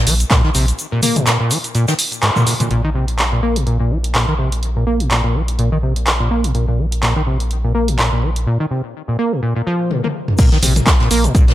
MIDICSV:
0, 0, Header, 1, 4, 480
1, 0, Start_track
1, 0, Tempo, 480000
1, 787, Time_signature, 4, 2, 24, 8
1, 11542, End_track
2, 0, Start_track
2, 0, Title_t, "Acid bass"
2, 0, Program_c, 0, 38
2, 67, Note_on_c, 0, 53, 73
2, 141, Note_off_c, 0, 53, 0
2, 307, Note_on_c, 0, 46, 99
2, 418, Note_off_c, 0, 46, 0
2, 442, Note_on_c, 0, 51, 103
2, 500, Note_off_c, 0, 51, 0
2, 547, Note_on_c, 0, 48, 79
2, 658, Note_off_c, 0, 48, 0
2, 922, Note_on_c, 0, 46, 82
2, 1009, Note_off_c, 0, 46, 0
2, 1027, Note_on_c, 0, 58, 103
2, 1162, Note_on_c, 0, 46, 107
2, 1177, Note_off_c, 0, 58, 0
2, 1249, Note_off_c, 0, 46, 0
2, 1267, Note_on_c, 0, 46, 86
2, 1378, Note_off_c, 0, 46, 0
2, 1402, Note_on_c, 0, 46, 78
2, 1506, Note_on_c, 0, 53, 76
2, 1521, Note_off_c, 0, 46, 0
2, 1581, Note_off_c, 0, 53, 0
2, 1747, Note_on_c, 0, 46, 105
2, 1858, Note_off_c, 0, 46, 0
2, 1882, Note_on_c, 0, 51, 100
2, 1940, Note_off_c, 0, 51, 0
2, 2227, Note_on_c, 0, 44, 104
2, 2302, Note_off_c, 0, 44, 0
2, 2363, Note_on_c, 0, 46, 103
2, 2449, Note_off_c, 0, 46, 0
2, 2467, Note_on_c, 0, 46, 80
2, 2541, Note_off_c, 0, 46, 0
2, 2603, Note_on_c, 0, 46, 102
2, 2689, Note_off_c, 0, 46, 0
2, 2707, Note_on_c, 0, 46, 100
2, 2819, Note_off_c, 0, 46, 0
2, 2842, Note_on_c, 0, 51, 101
2, 2900, Note_off_c, 0, 51, 0
2, 2948, Note_on_c, 0, 48, 75
2, 3059, Note_off_c, 0, 48, 0
2, 3322, Note_on_c, 0, 46, 74
2, 3409, Note_off_c, 0, 46, 0
2, 3427, Note_on_c, 0, 58, 96
2, 3563, Note_on_c, 0, 46, 100
2, 3578, Note_off_c, 0, 58, 0
2, 3649, Note_off_c, 0, 46, 0
2, 3667, Note_on_c, 0, 46, 80
2, 3779, Note_off_c, 0, 46, 0
2, 3802, Note_on_c, 0, 46, 76
2, 3907, Note_on_c, 0, 53, 74
2, 3922, Note_off_c, 0, 46, 0
2, 3981, Note_off_c, 0, 53, 0
2, 4147, Note_on_c, 0, 46, 98
2, 4259, Note_off_c, 0, 46, 0
2, 4282, Note_on_c, 0, 51, 97
2, 4340, Note_off_c, 0, 51, 0
2, 4387, Note_on_c, 0, 48, 75
2, 4499, Note_off_c, 0, 48, 0
2, 4762, Note_on_c, 0, 46, 81
2, 4849, Note_off_c, 0, 46, 0
2, 4867, Note_on_c, 0, 58, 101
2, 5002, Note_on_c, 0, 46, 104
2, 5017, Note_off_c, 0, 58, 0
2, 5089, Note_off_c, 0, 46, 0
2, 5107, Note_on_c, 0, 46, 85
2, 5218, Note_off_c, 0, 46, 0
2, 5242, Note_on_c, 0, 46, 76
2, 5347, Note_on_c, 0, 53, 73
2, 5362, Note_off_c, 0, 46, 0
2, 5421, Note_off_c, 0, 53, 0
2, 5586, Note_on_c, 0, 46, 100
2, 5698, Note_off_c, 0, 46, 0
2, 5722, Note_on_c, 0, 51, 97
2, 5780, Note_off_c, 0, 51, 0
2, 5827, Note_on_c, 0, 48, 74
2, 5938, Note_off_c, 0, 48, 0
2, 6202, Note_on_c, 0, 46, 75
2, 6289, Note_off_c, 0, 46, 0
2, 6307, Note_on_c, 0, 58, 100
2, 6442, Note_on_c, 0, 46, 100
2, 6457, Note_off_c, 0, 58, 0
2, 6529, Note_off_c, 0, 46, 0
2, 6547, Note_on_c, 0, 46, 83
2, 6659, Note_off_c, 0, 46, 0
2, 6682, Note_on_c, 0, 46, 79
2, 6787, Note_on_c, 0, 53, 77
2, 6802, Note_off_c, 0, 46, 0
2, 6861, Note_off_c, 0, 53, 0
2, 7026, Note_on_c, 0, 46, 104
2, 7138, Note_off_c, 0, 46, 0
2, 7162, Note_on_c, 0, 51, 96
2, 7220, Note_off_c, 0, 51, 0
2, 7266, Note_on_c, 0, 48, 74
2, 7378, Note_off_c, 0, 48, 0
2, 7642, Note_on_c, 0, 46, 77
2, 7728, Note_off_c, 0, 46, 0
2, 7746, Note_on_c, 0, 58, 102
2, 7881, Note_on_c, 0, 46, 102
2, 7896, Note_off_c, 0, 58, 0
2, 7968, Note_off_c, 0, 46, 0
2, 7986, Note_on_c, 0, 46, 81
2, 8098, Note_off_c, 0, 46, 0
2, 8122, Note_on_c, 0, 46, 76
2, 8227, Note_on_c, 0, 53, 77
2, 8242, Note_off_c, 0, 46, 0
2, 8301, Note_off_c, 0, 53, 0
2, 8467, Note_on_c, 0, 46, 103
2, 8578, Note_off_c, 0, 46, 0
2, 8602, Note_on_c, 0, 51, 104
2, 8660, Note_off_c, 0, 51, 0
2, 8707, Note_on_c, 0, 48, 77
2, 8818, Note_off_c, 0, 48, 0
2, 9082, Note_on_c, 0, 46, 74
2, 9169, Note_off_c, 0, 46, 0
2, 9186, Note_on_c, 0, 58, 101
2, 9321, Note_on_c, 0, 46, 103
2, 9336, Note_off_c, 0, 58, 0
2, 9408, Note_off_c, 0, 46, 0
2, 9426, Note_on_c, 0, 46, 83
2, 9538, Note_off_c, 0, 46, 0
2, 9562, Note_on_c, 0, 46, 77
2, 9620, Note_off_c, 0, 46, 0
2, 9667, Note_on_c, 0, 53, 100
2, 9906, Note_on_c, 0, 46, 100
2, 9922, Note_off_c, 0, 53, 0
2, 10018, Note_off_c, 0, 46, 0
2, 10042, Note_on_c, 0, 58, 73
2, 10077, Note_off_c, 0, 58, 0
2, 10387, Note_on_c, 0, 46, 101
2, 10498, Note_off_c, 0, 46, 0
2, 10522, Note_on_c, 0, 51, 107
2, 10580, Note_off_c, 0, 51, 0
2, 10627, Note_on_c, 0, 48, 76
2, 10739, Note_off_c, 0, 48, 0
2, 11003, Note_on_c, 0, 46, 77
2, 11089, Note_off_c, 0, 46, 0
2, 11107, Note_on_c, 0, 58, 103
2, 11243, Note_on_c, 0, 46, 104
2, 11258, Note_off_c, 0, 58, 0
2, 11329, Note_off_c, 0, 46, 0
2, 11348, Note_on_c, 0, 46, 84
2, 11459, Note_off_c, 0, 46, 0
2, 11483, Note_on_c, 0, 46, 78
2, 11542, Note_off_c, 0, 46, 0
2, 11542, End_track
3, 0, Start_track
3, 0, Title_t, "Sub bass"
3, 0, Program_c, 1, 38
3, 67, Note_on_c, 1, 34, 102
3, 244, Note_off_c, 1, 34, 0
3, 547, Note_on_c, 1, 34, 93
3, 724, Note_off_c, 1, 34, 0
3, 2707, Note_on_c, 1, 34, 91
3, 8467, Note_off_c, 1, 34, 0
3, 10627, Note_on_c, 1, 34, 102
3, 10804, Note_off_c, 1, 34, 0
3, 11107, Note_on_c, 1, 34, 87
3, 11284, Note_off_c, 1, 34, 0
3, 11542, End_track
4, 0, Start_track
4, 0, Title_t, "Drums"
4, 64, Note_on_c, 9, 38, 49
4, 67, Note_on_c, 9, 46, 102
4, 72, Note_on_c, 9, 69, 79
4, 164, Note_off_c, 9, 38, 0
4, 167, Note_off_c, 9, 46, 0
4, 172, Note_off_c, 9, 69, 0
4, 201, Note_on_c, 9, 82, 69
4, 202, Note_on_c, 9, 42, 67
4, 207, Note_on_c, 9, 69, 46
4, 301, Note_off_c, 9, 82, 0
4, 302, Note_off_c, 9, 42, 0
4, 305, Note_on_c, 9, 38, 111
4, 305, Note_on_c, 9, 82, 78
4, 307, Note_off_c, 9, 69, 0
4, 307, Note_on_c, 9, 36, 112
4, 307, Note_on_c, 9, 42, 53
4, 309, Note_on_c, 9, 39, 115
4, 312, Note_on_c, 9, 69, 35
4, 405, Note_off_c, 9, 38, 0
4, 405, Note_off_c, 9, 82, 0
4, 407, Note_off_c, 9, 36, 0
4, 407, Note_off_c, 9, 42, 0
4, 409, Note_off_c, 9, 39, 0
4, 412, Note_off_c, 9, 69, 0
4, 446, Note_on_c, 9, 38, 46
4, 542, Note_on_c, 9, 82, 61
4, 546, Note_off_c, 9, 38, 0
4, 546, Note_on_c, 9, 46, 86
4, 551, Note_on_c, 9, 69, 83
4, 642, Note_off_c, 9, 82, 0
4, 646, Note_off_c, 9, 46, 0
4, 651, Note_off_c, 9, 69, 0
4, 682, Note_on_c, 9, 42, 67
4, 687, Note_on_c, 9, 69, 48
4, 782, Note_off_c, 9, 42, 0
4, 786, Note_on_c, 9, 42, 54
4, 787, Note_off_c, 9, 69, 0
4, 788, Note_on_c, 9, 82, 96
4, 792, Note_on_c, 9, 69, 35
4, 886, Note_off_c, 9, 42, 0
4, 888, Note_off_c, 9, 82, 0
4, 892, Note_off_c, 9, 69, 0
4, 1024, Note_on_c, 9, 82, 69
4, 1026, Note_on_c, 9, 46, 101
4, 1026, Note_on_c, 9, 47, 78
4, 1031, Note_on_c, 9, 69, 83
4, 1124, Note_off_c, 9, 82, 0
4, 1126, Note_off_c, 9, 46, 0
4, 1126, Note_off_c, 9, 47, 0
4, 1131, Note_off_c, 9, 69, 0
4, 1162, Note_on_c, 9, 42, 71
4, 1162, Note_on_c, 9, 47, 91
4, 1167, Note_on_c, 9, 69, 48
4, 1262, Note_off_c, 9, 42, 0
4, 1262, Note_off_c, 9, 47, 0
4, 1266, Note_on_c, 9, 42, 54
4, 1266, Note_on_c, 9, 82, 89
4, 1267, Note_off_c, 9, 69, 0
4, 1268, Note_on_c, 9, 38, 113
4, 1268, Note_on_c, 9, 39, 120
4, 1272, Note_on_c, 9, 69, 34
4, 1366, Note_off_c, 9, 42, 0
4, 1366, Note_off_c, 9, 82, 0
4, 1368, Note_off_c, 9, 38, 0
4, 1368, Note_off_c, 9, 39, 0
4, 1372, Note_off_c, 9, 69, 0
4, 1507, Note_on_c, 9, 46, 90
4, 1507, Note_on_c, 9, 82, 78
4, 1512, Note_on_c, 9, 69, 83
4, 1607, Note_off_c, 9, 46, 0
4, 1607, Note_off_c, 9, 82, 0
4, 1612, Note_off_c, 9, 69, 0
4, 1642, Note_on_c, 9, 42, 68
4, 1647, Note_on_c, 9, 69, 45
4, 1742, Note_off_c, 9, 42, 0
4, 1747, Note_off_c, 9, 69, 0
4, 1747, Note_on_c, 9, 42, 51
4, 1749, Note_on_c, 9, 82, 57
4, 1752, Note_on_c, 9, 69, 34
4, 1847, Note_off_c, 9, 42, 0
4, 1849, Note_off_c, 9, 82, 0
4, 1852, Note_off_c, 9, 69, 0
4, 1878, Note_on_c, 9, 82, 81
4, 1880, Note_on_c, 9, 38, 101
4, 1978, Note_off_c, 9, 82, 0
4, 1980, Note_off_c, 9, 38, 0
4, 1986, Note_on_c, 9, 46, 101
4, 1991, Note_on_c, 9, 69, 82
4, 2086, Note_off_c, 9, 46, 0
4, 2091, Note_off_c, 9, 69, 0
4, 2119, Note_on_c, 9, 82, 61
4, 2122, Note_on_c, 9, 42, 70
4, 2126, Note_on_c, 9, 69, 46
4, 2219, Note_off_c, 9, 82, 0
4, 2222, Note_off_c, 9, 42, 0
4, 2226, Note_off_c, 9, 69, 0
4, 2226, Note_on_c, 9, 42, 55
4, 2228, Note_on_c, 9, 39, 120
4, 2232, Note_on_c, 9, 69, 34
4, 2327, Note_off_c, 9, 42, 0
4, 2328, Note_off_c, 9, 39, 0
4, 2332, Note_off_c, 9, 69, 0
4, 2360, Note_on_c, 9, 82, 60
4, 2361, Note_on_c, 9, 47, 89
4, 2460, Note_off_c, 9, 82, 0
4, 2461, Note_off_c, 9, 47, 0
4, 2466, Note_on_c, 9, 46, 89
4, 2470, Note_on_c, 9, 82, 71
4, 2471, Note_on_c, 9, 69, 80
4, 2566, Note_off_c, 9, 46, 0
4, 2570, Note_off_c, 9, 82, 0
4, 2571, Note_off_c, 9, 69, 0
4, 2602, Note_on_c, 9, 42, 71
4, 2602, Note_on_c, 9, 47, 89
4, 2607, Note_on_c, 9, 69, 47
4, 2702, Note_off_c, 9, 42, 0
4, 2702, Note_off_c, 9, 47, 0
4, 2706, Note_on_c, 9, 42, 53
4, 2707, Note_off_c, 9, 69, 0
4, 2806, Note_off_c, 9, 42, 0
4, 3082, Note_on_c, 9, 42, 67
4, 3182, Note_off_c, 9, 42, 0
4, 3187, Note_on_c, 9, 42, 51
4, 3189, Note_on_c, 9, 39, 114
4, 3287, Note_off_c, 9, 42, 0
4, 3289, Note_off_c, 9, 39, 0
4, 3562, Note_on_c, 9, 42, 67
4, 3662, Note_off_c, 9, 42, 0
4, 3667, Note_on_c, 9, 42, 49
4, 3767, Note_off_c, 9, 42, 0
4, 4042, Note_on_c, 9, 42, 66
4, 4142, Note_off_c, 9, 42, 0
4, 4148, Note_on_c, 9, 42, 52
4, 4150, Note_on_c, 9, 39, 123
4, 4248, Note_off_c, 9, 42, 0
4, 4250, Note_off_c, 9, 39, 0
4, 4523, Note_on_c, 9, 42, 67
4, 4623, Note_off_c, 9, 42, 0
4, 4628, Note_on_c, 9, 42, 51
4, 4728, Note_off_c, 9, 42, 0
4, 5003, Note_on_c, 9, 42, 66
4, 5103, Note_off_c, 9, 42, 0
4, 5108, Note_on_c, 9, 42, 50
4, 5110, Note_on_c, 9, 39, 114
4, 5208, Note_off_c, 9, 42, 0
4, 5210, Note_off_c, 9, 39, 0
4, 5482, Note_on_c, 9, 42, 63
4, 5582, Note_off_c, 9, 42, 0
4, 5588, Note_on_c, 9, 42, 50
4, 5688, Note_off_c, 9, 42, 0
4, 5962, Note_on_c, 9, 42, 67
4, 6062, Note_off_c, 9, 42, 0
4, 6067, Note_on_c, 9, 42, 50
4, 6069, Note_on_c, 9, 39, 116
4, 6167, Note_off_c, 9, 42, 0
4, 6169, Note_off_c, 9, 39, 0
4, 6442, Note_on_c, 9, 42, 64
4, 6542, Note_off_c, 9, 42, 0
4, 6547, Note_on_c, 9, 42, 48
4, 6647, Note_off_c, 9, 42, 0
4, 6922, Note_on_c, 9, 42, 66
4, 7022, Note_off_c, 9, 42, 0
4, 7027, Note_on_c, 9, 42, 50
4, 7029, Note_on_c, 9, 39, 115
4, 7127, Note_off_c, 9, 42, 0
4, 7129, Note_off_c, 9, 39, 0
4, 7402, Note_on_c, 9, 42, 61
4, 7502, Note_off_c, 9, 42, 0
4, 7507, Note_on_c, 9, 42, 49
4, 7607, Note_off_c, 9, 42, 0
4, 7882, Note_on_c, 9, 42, 64
4, 7982, Note_off_c, 9, 42, 0
4, 7987, Note_on_c, 9, 42, 48
4, 7989, Note_on_c, 9, 39, 118
4, 8087, Note_off_c, 9, 42, 0
4, 8089, Note_off_c, 9, 39, 0
4, 8362, Note_on_c, 9, 42, 62
4, 8462, Note_off_c, 9, 42, 0
4, 9907, Note_on_c, 9, 48, 61
4, 10007, Note_off_c, 9, 48, 0
4, 10042, Note_on_c, 9, 48, 61
4, 10142, Note_off_c, 9, 48, 0
4, 10282, Note_on_c, 9, 45, 83
4, 10382, Note_off_c, 9, 45, 0
4, 10382, Note_on_c, 9, 82, 86
4, 10386, Note_on_c, 9, 42, 54
4, 10386, Note_on_c, 9, 49, 104
4, 10387, Note_on_c, 9, 36, 113
4, 10391, Note_on_c, 9, 69, 33
4, 10482, Note_off_c, 9, 82, 0
4, 10486, Note_off_c, 9, 42, 0
4, 10486, Note_off_c, 9, 49, 0
4, 10487, Note_off_c, 9, 36, 0
4, 10491, Note_off_c, 9, 69, 0
4, 10521, Note_on_c, 9, 42, 29
4, 10522, Note_on_c, 9, 38, 53
4, 10621, Note_off_c, 9, 42, 0
4, 10622, Note_off_c, 9, 38, 0
4, 10626, Note_on_c, 9, 46, 109
4, 10626, Note_on_c, 9, 47, 82
4, 10626, Note_on_c, 9, 82, 74
4, 10631, Note_on_c, 9, 69, 78
4, 10726, Note_off_c, 9, 46, 0
4, 10726, Note_off_c, 9, 47, 0
4, 10726, Note_off_c, 9, 82, 0
4, 10731, Note_off_c, 9, 69, 0
4, 10762, Note_on_c, 9, 42, 57
4, 10762, Note_on_c, 9, 47, 91
4, 10766, Note_on_c, 9, 69, 48
4, 10862, Note_off_c, 9, 42, 0
4, 10862, Note_off_c, 9, 47, 0
4, 10866, Note_off_c, 9, 69, 0
4, 10866, Note_on_c, 9, 42, 55
4, 10867, Note_on_c, 9, 36, 120
4, 10868, Note_on_c, 9, 39, 121
4, 10869, Note_on_c, 9, 82, 85
4, 10872, Note_on_c, 9, 69, 33
4, 10874, Note_on_c, 9, 38, 111
4, 10966, Note_off_c, 9, 42, 0
4, 10967, Note_off_c, 9, 36, 0
4, 10968, Note_off_c, 9, 39, 0
4, 10969, Note_off_c, 9, 82, 0
4, 10971, Note_off_c, 9, 69, 0
4, 10974, Note_off_c, 9, 38, 0
4, 11002, Note_on_c, 9, 42, 27
4, 11006, Note_on_c, 9, 38, 50
4, 11102, Note_off_c, 9, 42, 0
4, 11105, Note_on_c, 9, 82, 66
4, 11106, Note_off_c, 9, 38, 0
4, 11107, Note_on_c, 9, 46, 97
4, 11112, Note_on_c, 9, 69, 84
4, 11205, Note_off_c, 9, 82, 0
4, 11207, Note_off_c, 9, 46, 0
4, 11212, Note_off_c, 9, 69, 0
4, 11241, Note_on_c, 9, 42, 42
4, 11242, Note_off_c, 9, 42, 0
4, 11242, Note_on_c, 9, 42, 56
4, 11247, Note_on_c, 9, 69, 44
4, 11342, Note_off_c, 9, 42, 0
4, 11347, Note_off_c, 9, 69, 0
4, 11347, Note_on_c, 9, 36, 119
4, 11348, Note_on_c, 9, 42, 55
4, 11353, Note_on_c, 9, 69, 33
4, 11353, Note_on_c, 9, 82, 84
4, 11447, Note_off_c, 9, 36, 0
4, 11448, Note_off_c, 9, 42, 0
4, 11453, Note_off_c, 9, 69, 0
4, 11453, Note_off_c, 9, 82, 0
4, 11483, Note_on_c, 9, 42, 27
4, 11487, Note_on_c, 9, 38, 47
4, 11542, Note_off_c, 9, 38, 0
4, 11542, Note_off_c, 9, 42, 0
4, 11542, End_track
0, 0, End_of_file